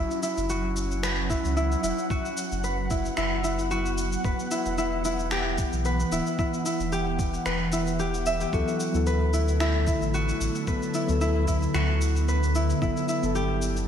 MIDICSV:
0, 0, Header, 1, 6, 480
1, 0, Start_track
1, 0, Tempo, 535714
1, 1884, Time_signature, 4, 2, 24, 8
1, 12436, End_track
2, 0, Start_track
2, 0, Title_t, "Harp"
2, 0, Program_c, 0, 46
2, 0, Note_on_c, 0, 64, 93
2, 0, Note_on_c, 0, 66, 96
2, 0, Note_on_c, 0, 71, 76
2, 200, Note_off_c, 0, 64, 0
2, 204, Note_on_c, 0, 64, 73
2, 363, Note_off_c, 0, 71, 0
2, 441, Note_off_c, 0, 66, 0
2, 444, Note_on_c, 0, 66, 93
2, 922, Note_on_c, 0, 71, 75
2, 1159, Note_off_c, 0, 64, 0
2, 1163, Note_on_c, 0, 64, 67
2, 1400, Note_off_c, 0, 64, 0
2, 1404, Note_on_c, 0, 64, 94
2, 1639, Note_off_c, 0, 64, 0
2, 1642, Note_on_c, 0, 64, 72
2, 1881, Note_off_c, 0, 66, 0
2, 1885, Note_on_c, 0, 66, 93
2, 2361, Note_off_c, 0, 71, 0
2, 2364, Note_on_c, 0, 71, 73
2, 2600, Note_off_c, 0, 64, 0
2, 2603, Note_on_c, 0, 64, 67
2, 2839, Note_off_c, 0, 64, 0
2, 2843, Note_on_c, 0, 64, 84
2, 3079, Note_off_c, 0, 64, 0
2, 3083, Note_on_c, 0, 64, 67
2, 3320, Note_off_c, 0, 66, 0
2, 3323, Note_on_c, 0, 66, 95
2, 3800, Note_off_c, 0, 71, 0
2, 3803, Note_on_c, 0, 71, 77
2, 4039, Note_off_c, 0, 64, 0
2, 4042, Note_on_c, 0, 64, 72
2, 4280, Note_off_c, 0, 64, 0
2, 4283, Note_on_c, 0, 64, 88
2, 4521, Note_off_c, 0, 64, 0
2, 4525, Note_on_c, 0, 64, 70
2, 4765, Note_on_c, 0, 67, 89
2, 4819, Note_off_c, 0, 66, 0
2, 5241, Note_off_c, 0, 71, 0
2, 5245, Note_on_c, 0, 71, 80
2, 5481, Note_off_c, 0, 64, 0
2, 5484, Note_on_c, 0, 64, 71
2, 5721, Note_off_c, 0, 64, 0
2, 5725, Note_on_c, 0, 64, 90
2, 5960, Note_off_c, 0, 64, 0
2, 5964, Note_on_c, 0, 64, 74
2, 6200, Note_off_c, 0, 67, 0
2, 6204, Note_on_c, 0, 67, 91
2, 6678, Note_off_c, 0, 71, 0
2, 6682, Note_on_c, 0, 71, 72
2, 6919, Note_off_c, 0, 64, 0
2, 6923, Note_on_c, 0, 64, 70
2, 7159, Note_off_c, 0, 67, 0
2, 7163, Note_on_c, 0, 67, 74
2, 7405, Note_on_c, 0, 76, 71
2, 7532, Note_off_c, 0, 67, 0
2, 7536, Note_on_c, 0, 67, 70
2, 7644, Note_on_c, 0, 66, 90
2, 7698, Note_off_c, 0, 67, 0
2, 8120, Note_off_c, 0, 71, 0
2, 8124, Note_on_c, 0, 71, 79
2, 8360, Note_off_c, 0, 64, 0
2, 8364, Note_on_c, 0, 64, 67
2, 8601, Note_off_c, 0, 64, 0
2, 8605, Note_on_c, 0, 64, 87
2, 8842, Note_off_c, 0, 64, 0
2, 8846, Note_on_c, 0, 64, 73
2, 8949, Note_off_c, 0, 76, 0
2, 9083, Note_off_c, 0, 66, 0
2, 9087, Note_on_c, 0, 66, 105
2, 9562, Note_off_c, 0, 71, 0
2, 9566, Note_on_c, 0, 71, 77
2, 9803, Note_off_c, 0, 64, 0
2, 9807, Note_on_c, 0, 64, 72
2, 10042, Note_off_c, 0, 64, 0
2, 10046, Note_on_c, 0, 64, 93
2, 10278, Note_off_c, 0, 64, 0
2, 10282, Note_on_c, 0, 64, 72
2, 10519, Note_off_c, 0, 66, 0
2, 10522, Note_on_c, 0, 66, 97
2, 11003, Note_off_c, 0, 71, 0
2, 11007, Note_on_c, 0, 71, 82
2, 11245, Note_off_c, 0, 64, 0
2, 11248, Note_on_c, 0, 64, 73
2, 11483, Note_off_c, 0, 64, 0
2, 11487, Note_on_c, 0, 64, 96
2, 11723, Note_off_c, 0, 64, 0
2, 11726, Note_on_c, 0, 64, 81
2, 11964, Note_on_c, 0, 67, 92
2, 12017, Note_off_c, 0, 66, 0
2, 12436, Note_off_c, 0, 64, 0
2, 12436, Note_off_c, 0, 67, 0
2, 12436, Note_off_c, 0, 71, 0
2, 12436, End_track
3, 0, Start_track
3, 0, Title_t, "Synth keys"
3, 0, Program_c, 1, 88
3, 7636, Note_on_c, 1, 54, 82
3, 7640, Note_on_c, 1, 59, 78
3, 7647, Note_on_c, 1, 64, 78
3, 7653, Note_on_c, 1, 69, 94
3, 7819, Control_c, 1, 64, 127
3, 7980, Note_off_c, 1, 54, 0
3, 7982, Note_off_c, 1, 59, 0
3, 7986, Note_off_c, 1, 64, 0
3, 7989, Note_off_c, 1, 69, 0
3, 7996, Note_on_c, 1, 54, 85
3, 8008, Note_on_c, 1, 59, 76
3, 8019, Note_on_c, 1, 64, 85
3, 8031, Note_on_c, 1, 69, 96
3, 9529, Note_off_c, 1, 54, 0
3, 9534, Note_off_c, 1, 59, 0
3, 9540, Note_off_c, 1, 64, 0
3, 9546, Note_off_c, 1, 69, 0
3, 9557, Note_on_c, 1, 54, 84
3, 9562, Note_on_c, 1, 59, 70
3, 9568, Note_on_c, 1, 64, 75
3, 9573, Note_on_c, 1, 69, 85
3, 9901, Note_off_c, 1, 54, 0
3, 9903, Note_off_c, 1, 59, 0
3, 9906, Note_off_c, 1, 64, 0
3, 9909, Note_off_c, 1, 69, 0
3, 9916, Note_on_c, 1, 54, 86
3, 9927, Note_on_c, 1, 59, 72
3, 9940, Note_on_c, 1, 64, 79
3, 9951, Note_on_c, 1, 69, 94
3, 11448, Note_off_c, 1, 54, 0
3, 11454, Note_off_c, 1, 59, 0
3, 11460, Note_off_c, 1, 64, 0
3, 11466, Note_off_c, 1, 69, 0
3, 11480, Note_on_c, 1, 54, 90
3, 11485, Note_on_c, 1, 59, 80
3, 11490, Note_on_c, 1, 64, 81
3, 11494, Control_c, 1, 64, 0
3, 11498, Note_on_c, 1, 69, 88
3, 11666, Control_c, 1, 64, 127
3, 11822, Note_off_c, 1, 54, 0
3, 11825, Note_off_c, 1, 59, 0
3, 11827, Note_off_c, 1, 64, 0
3, 11831, Note_off_c, 1, 69, 0
3, 11849, Note_on_c, 1, 59, 84
3, 11863, Note_on_c, 1, 64, 81
3, 11876, Note_on_c, 1, 69, 97
3, 12436, Note_off_c, 1, 59, 0
3, 12436, Note_off_c, 1, 64, 0
3, 12436, Note_off_c, 1, 69, 0
3, 12436, End_track
4, 0, Start_track
4, 0, Title_t, "Ambient pad"
4, 0, Program_c, 2, 92
4, 0, Note_on_c, 2, 54, 78
4, 0, Note_on_c, 2, 61, 72
4, 0, Note_on_c, 2, 78, 86
4, 1866, Note_off_c, 2, 61, 0
4, 1886, Note_on_c, 2, 59, 76
4, 3769, Note_off_c, 2, 54, 0
4, 3806, Note_on_c, 2, 52, 74
4, 7609, Note_off_c, 2, 52, 0
4, 7609, Note_off_c, 2, 59, 0
4, 7610, Note_off_c, 2, 78, 0
4, 7643, Note_on_c, 2, 57, 72
4, 7643, Note_on_c, 2, 64, 87
4, 7644, Note_on_c, 2, 50, 81
4, 9544, Note_off_c, 2, 57, 0
4, 9562, Note_on_c, 2, 59, 68
4, 11448, Note_off_c, 2, 50, 0
4, 11448, Note_off_c, 2, 64, 0
4, 11464, Note_off_c, 2, 59, 0
4, 11485, Note_on_c, 2, 62, 76
4, 11485, Note_on_c, 2, 69, 94
4, 12436, Note_off_c, 2, 62, 0
4, 12436, Note_off_c, 2, 69, 0
4, 12436, End_track
5, 0, Start_track
5, 0, Title_t, "Sub bass"
5, 0, Program_c, 3, 38
5, 336, Note_on_c, 3, 30, 76
5, 1215, Note_off_c, 3, 30, 0
5, 1297, Note_on_c, 3, 37, 88
5, 1578, Note_off_c, 3, 37, 0
5, 1643, Note_on_c, 3, 28, 87
5, 1725, Note_off_c, 3, 28, 0
5, 2257, Note_on_c, 3, 30, 77
5, 2778, Note_off_c, 3, 30, 0
5, 2846, Note_on_c, 3, 30, 83
5, 3738, Note_off_c, 3, 30, 0
5, 3803, Note_on_c, 3, 28, 98
5, 3884, Note_off_c, 3, 28, 0
5, 4175, Note_on_c, 3, 28, 76
5, 5054, Note_off_c, 3, 28, 0
5, 5135, Note_on_c, 3, 35, 84
5, 5417, Note_off_c, 3, 35, 0
5, 5482, Note_on_c, 3, 26, 92
5, 5564, Note_off_c, 3, 26, 0
5, 6093, Note_on_c, 3, 28, 73
5, 6616, Note_off_c, 3, 28, 0
5, 6683, Note_on_c, 3, 28, 84
5, 7577, Note_off_c, 3, 28, 0
5, 7644, Note_on_c, 3, 38, 101
5, 7725, Note_off_c, 3, 38, 0
5, 8014, Note_on_c, 3, 38, 78
5, 8894, Note_off_c, 3, 38, 0
5, 8974, Note_on_c, 3, 33, 86
5, 9256, Note_off_c, 3, 33, 0
5, 9325, Note_on_c, 3, 33, 90
5, 9405, Note_off_c, 3, 33, 0
5, 9936, Note_on_c, 3, 38, 77
5, 10457, Note_off_c, 3, 38, 0
5, 10523, Note_on_c, 3, 38, 83
5, 11417, Note_off_c, 3, 38, 0
5, 11486, Note_on_c, 3, 31, 101
5, 11566, Note_off_c, 3, 31, 0
5, 11855, Note_on_c, 3, 31, 78
5, 12436, Note_off_c, 3, 31, 0
5, 12436, End_track
6, 0, Start_track
6, 0, Title_t, "Drums"
6, 97, Note_on_c, 9, 82, 27
6, 187, Note_off_c, 9, 82, 0
6, 206, Note_on_c, 9, 82, 68
6, 295, Note_off_c, 9, 82, 0
6, 336, Note_on_c, 9, 82, 29
6, 426, Note_off_c, 9, 82, 0
6, 445, Note_on_c, 9, 82, 43
6, 534, Note_off_c, 9, 82, 0
6, 686, Note_on_c, 9, 82, 70
6, 775, Note_off_c, 9, 82, 0
6, 820, Note_on_c, 9, 82, 29
6, 909, Note_off_c, 9, 82, 0
6, 927, Note_on_c, 9, 26, 76
6, 928, Note_on_c, 9, 82, 42
6, 1017, Note_off_c, 9, 26, 0
6, 1018, Note_off_c, 9, 82, 0
6, 1164, Note_on_c, 9, 36, 87
6, 1168, Note_on_c, 9, 82, 69
6, 1254, Note_off_c, 9, 36, 0
6, 1257, Note_off_c, 9, 82, 0
6, 1299, Note_on_c, 9, 82, 29
6, 1389, Note_off_c, 9, 82, 0
6, 1407, Note_on_c, 9, 82, 40
6, 1496, Note_off_c, 9, 82, 0
6, 1540, Note_on_c, 9, 82, 28
6, 1630, Note_off_c, 9, 82, 0
6, 1647, Note_on_c, 9, 82, 72
6, 1737, Note_off_c, 9, 82, 0
6, 1780, Note_on_c, 9, 82, 29
6, 1869, Note_off_c, 9, 82, 0
6, 1884, Note_on_c, 9, 36, 108
6, 1887, Note_on_c, 9, 82, 43
6, 1974, Note_off_c, 9, 36, 0
6, 1977, Note_off_c, 9, 82, 0
6, 2019, Note_on_c, 9, 82, 29
6, 2108, Note_off_c, 9, 82, 0
6, 2126, Note_on_c, 9, 82, 72
6, 2216, Note_off_c, 9, 82, 0
6, 2257, Note_on_c, 9, 82, 32
6, 2347, Note_off_c, 9, 82, 0
6, 2365, Note_on_c, 9, 82, 45
6, 2455, Note_off_c, 9, 82, 0
6, 2604, Note_on_c, 9, 36, 92
6, 2604, Note_on_c, 9, 82, 72
6, 2693, Note_off_c, 9, 36, 0
6, 2693, Note_off_c, 9, 82, 0
6, 2736, Note_on_c, 9, 82, 33
6, 2826, Note_off_c, 9, 82, 0
6, 2841, Note_on_c, 9, 26, 78
6, 2842, Note_on_c, 9, 82, 45
6, 2930, Note_off_c, 9, 26, 0
6, 2932, Note_off_c, 9, 82, 0
6, 3085, Note_on_c, 9, 82, 78
6, 3175, Note_off_c, 9, 82, 0
6, 3217, Note_on_c, 9, 82, 29
6, 3306, Note_off_c, 9, 82, 0
6, 3325, Note_on_c, 9, 82, 41
6, 3415, Note_off_c, 9, 82, 0
6, 3457, Note_on_c, 9, 82, 30
6, 3546, Note_off_c, 9, 82, 0
6, 3565, Note_on_c, 9, 82, 76
6, 3655, Note_off_c, 9, 82, 0
6, 3697, Note_on_c, 9, 82, 34
6, 3786, Note_off_c, 9, 82, 0
6, 3804, Note_on_c, 9, 36, 115
6, 3805, Note_on_c, 9, 82, 42
6, 3893, Note_off_c, 9, 36, 0
6, 3895, Note_off_c, 9, 82, 0
6, 3938, Note_on_c, 9, 82, 32
6, 4028, Note_off_c, 9, 82, 0
6, 4043, Note_on_c, 9, 82, 72
6, 4133, Note_off_c, 9, 82, 0
6, 4174, Note_on_c, 9, 82, 32
6, 4264, Note_off_c, 9, 82, 0
6, 4284, Note_on_c, 9, 82, 46
6, 4373, Note_off_c, 9, 82, 0
6, 4522, Note_on_c, 9, 82, 74
6, 4612, Note_off_c, 9, 82, 0
6, 4654, Note_on_c, 9, 82, 30
6, 4743, Note_off_c, 9, 82, 0
6, 4758, Note_on_c, 9, 26, 78
6, 4760, Note_on_c, 9, 82, 43
6, 4848, Note_off_c, 9, 26, 0
6, 4850, Note_off_c, 9, 82, 0
6, 5001, Note_on_c, 9, 82, 80
6, 5004, Note_on_c, 9, 36, 96
6, 5091, Note_off_c, 9, 82, 0
6, 5093, Note_off_c, 9, 36, 0
6, 5132, Note_on_c, 9, 82, 32
6, 5222, Note_off_c, 9, 82, 0
6, 5242, Note_on_c, 9, 82, 42
6, 5331, Note_off_c, 9, 82, 0
6, 5376, Note_on_c, 9, 82, 31
6, 5466, Note_off_c, 9, 82, 0
6, 5485, Note_on_c, 9, 82, 80
6, 5574, Note_off_c, 9, 82, 0
6, 5616, Note_on_c, 9, 82, 31
6, 5705, Note_off_c, 9, 82, 0
6, 5724, Note_on_c, 9, 36, 109
6, 5725, Note_on_c, 9, 82, 41
6, 5813, Note_off_c, 9, 36, 0
6, 5815, Note_off_c, 9, 82, 0
6, 5857, Note_on_c, 9, 82, 29
6, 5947, Note_off_c, 9, 82, 0
6, 5965, Note_on_c, 9, 82, 74
6, 6055, Note_off_c, 9, 82, 0
6, 6096, Note_on_c, 9, 82, 31
6, 6185, Note_off_c, 9, 82, 0
6, 6204, Note_on_c, 9, 82, 45
6, 6294, Note_off_c, 9, 82, 0
6, 6443, Note_on_c, 9, 36, 96
6, 6445, Note_on_c, 9, 82, 73
6, 6533, Note_off_c, 9, 36, 0
6, 6535, Note_off_c, 9, 82, 0
6, 6576, Note_on_c, 9, 82, 31
6, 6666, Note_off_c, 9, 82, 0
6, 6682, Note_on_c, 9, 26, 74
6, 6684, Note_on_c, 9, 82, 46
6, 6772, Note_off_c, 9, 26, 0
6, 6773, Note_off_c, 9, 82, 0
6, 6920, Note_on_c, 9, 82, 78
6, 7010, Note_off_c, 9, 82, 0
6, 7054, Note_on_c, 9, 82, 32
6, 7143, Note_off_c, 9, 82, 0
6, 7164, Note_on_c, 9, 82, 42
6, 7253, Note_off_c, 9, 82, 0
6, 7297, Note_on_c, 9, 82, 30
6, 7386, Note_off_c, 9, 82, 0
6, 7403, Note_on_c, 9, 82, 77
6, 7492, Note_off_c, 9, 82, 0
6, 7533, Note_on_c, 9, 82, 33
6, 7623, Note_off_c, 9, 82, 0
6, 7643, Note_on_c, 9, 36, 108
6, 7646, Note_on_c, 9, 82, 44
6, 7733, Note_off_c, 9, 36, 0
6, 7735, Note_off_c, 9, 82, 0
6, 7778, Note_on_c, 9, 82, 28
6, 7867, Note_off_c, 9, 82, 0
6, 7885, Note_on_c, 9, 82, 68
6, 7975, Note_off_c, 9, 82, 0
6, 8016, Note_on_c, 9, 82, 31
6, 8105, Note_off_c, 9, 82, 0
6, 8124, Note_on_c, 9, 82, 46
6, 8214, Note_off_c, 9, 82, 0
6, 8366, Note_on_c, 9, 82, 69
6, 8455, Note_off_c, 9, 82, 0
6, 8498, Note_on_c, 9, 82, 29
6, 8588, Note_off_c, 9, 82, 0
6, 8605, Note_on_c, 9, 26, 69
6, 8607, Note_on_c, 9, 82, 44
6, 8695, Note_off_c, 9, 26, 0
6, 8696, Note_off_c, 9, 82, 0
6, 8844, Note_on_c, 9, 36, 93
6, 8845, Note_on_c, 9, 82, 75
6, 8933, Note_off_c, 9, 36, 0
6, 8935, Note_off_c, 9, 82, 0
6, 8979, Note_on_c, 9, 82, 31
6, 9069, Note_off_c, 9, 82, 0
6, 9087, Note_on_c, 9, 82, 41
6, 9176, Note_off_c, 9, 82, 0
6, 9218, Note_on_c, 9, 82, 29
6, 9308, Note_off_c, 9, 82, 0
6, 9327, Note_on_c, 9, 82, 73
6, 9417, Note_off_c, 9, 82, 0
6, 9456, Note_on_c, 9, 82, 32
6, 9546, Note_off_c, 9, 82, 0
6, 9565, Note_on_c, 9, 36, 106
6, 9565, Note_on_c, 9, 82, 41
6, 9654, Note_off_c, 9, 36, 0
6, 9654, Note_off_c, 9, 82, 0
6, 9698, Note_on_c, 9, 82, 28
6, 9788, Note_off_c, 9, 82, 0
6, 9804, Note_on_c, 9, 82, 68
6, 9893, Note_off_c, 9, 82, 0
6, 9936, Note_on_c, 9, 82, 30
6, 10025, Note_off_c, 9, 82, 0
6, 10046, Note_on_c, 9, 82, 42
6, 10135, Note_off_c, 9, 82, 0
6, 10285, Note_on_c, 9, 36, 85
6, 10286, Note_on_c, 9, 82, 72
6, 10375, Note_off_c, 9, 36, 0
6, 10375, Note_off_c, 9, 82, 0
6, 10416, Note_on_c, 9, 82, 32
6, 10505, Note_off_c, 9, 82, 0
6, 10524, Note_on_c, 9, 26, 72
6, 10525, Note_on_c, 9, 82, 44
6, 10613, Note_off_c, 9, 26, 0
6, 10615, Note_off_c, 9, 82, 0
6, 10765, Note_on_c, 9, 82, 70
6, 10855, Note_off_c, 9, 82, 0
6, 10899, Note_on_c, 9, 82, 32
6, 10989, Note_off_c, 9, 82, 0
6, 11009, Note_on_c, 9, 82, 39
6, 11098, Note_off_c, 9, 82, 0
6, 11140, Note_on_c, 9, 82, 28
6, 11230, Note_off_c, 9, 82, 0
6, 11247, Note_on_c, 9, 82, 73
6, 11337, Note_off_c, 9, 82, 0
6, 11379, Note_on_c, 9, 82, 31
6, 11468, Note_off_c, 9, 82, 0
6, 11486, Note_on_c, 9, 36, 104
6, 11488, Note_on_c, 9, 82, 39
6, 11575, Note_off_c, 9, 36, 0
6, 11578, Note_off_c, 9, 82, 0
6, 11619, Note_on_c, 9, 82, 27
6, 11709, Note_off_c, 9, 82, 0
6, 11726, Note_on_c, 9, 82, 64
6, 11816, Note_off_c, 9, 82, 0
6, 11857, Note_on_c, 9, 82, 28
6, 11947, Note_off_c, 9, 82, 0
6, 11965, Note_on_c, 9, 82, 41
6, 12055, Note_off_c, 9, 82, 0
6, 12203, Note_on_c, 9, 82, 63
6, 12293, Note_off_c, 9, 82, 0
6, 12336, Note_on_c, 9, 82, 31
6, 12426, Note_off_c, 9, 82, 0
6, 12436, End_track
0, 0, End_of_file